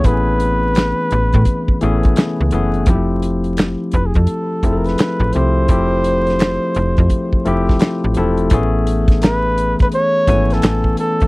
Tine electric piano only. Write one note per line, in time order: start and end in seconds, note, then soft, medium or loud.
0.00 0.05 E3 medium
0.00 0.06 A3 medium
0.00 0.07 B3 medium
0.00 0.14 C#4 medium
0.00 0.08 G#4 medium
0.05 1.31 E3 medium
0.05 1.31 A3 medium
0.05 1.32 B3 medium
0.05 0.14 C4 soft
0.05 1.32 G#4 medium
0.14 1.35 C#4 medium
1.81 2.45 E3 medium
1.81 2.45 A3 medium
1.81 2.45 B3 medium
1.81 2.46 C#4 medium
1.81 2.46 G#4 medium
2.52 2.84 E3 medium
2.52 2.84 A3 medium
2.52 2.84 B3 medium
2.52 2.85 C#4 medium
2.52 2.85 G#4 medium
2.88 4.13 F3 medium
2.88 2.96 G3 medium
2.88 4.14 C4 medium
2.88 4.14 E4 medium
2.88 4.14 G4 medium
2.95 4.17 A3 medium
4.64 5.27 F3 medium
4.64 5.28 A3 medium
4.64 5.28 C4 medium
4.64 5.28 E4 medium
4.64 4.73 G#4 medium
4.73 5.32 A4 medium
5.34 5.66 F3 medium
5.34 5.66 A3 medium
5.34 5.66 C4 medium
5.34 5.67 E4 medium
5.34 5.67 G4 medium
5.69 6.95 F3 medium
5.69 6.96 A3 medium
5.69 6.96 C4 medium
5.69 6.96 E4 medium
5.69 6.96 G4 medium
7.45 8.09 F3 medium
7.45 8.09 A3 medium
7.45 8.09 C4 medium
7.45 8.10 E4 medium
7.45 8.10 G4 medium
8.17 8.48 F3 medium
8.17 8.49 A3 medium
8.17 8.49 C4 medium
8.17 8.49 E4 medium
8.17 8.49 A4 medium
8.52 9.78 E3 medium
8.52 9.78 A3 medium
8.52 9.78 B3 medium
8.52 9.79 C#4 medium
8.52 9.79 G#4 medium
10.27 11.23 E3 medium
10.27 11.23 A3 medium
10.27 11.24 B3 medium
10.27 11.24 C#4 medium
10.27 11.24 G#5 medium